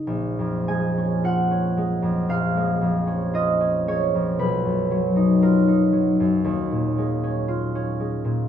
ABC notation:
X:1
M:4/4
L:1/16
Q:1/4=57
K:A#phr
V:1 name="Harp"
A2 g2 f4 e4 d2 c2 | B4 A12 |]
V:2 name="Harp" clef=bass
[A,,,G,C] E,, G, C E C G, E,, A,,, G, E,, C E C G, E,, | B,,, F,, F, D E D F, F,, D,, A,, G, C E C G, A,, |]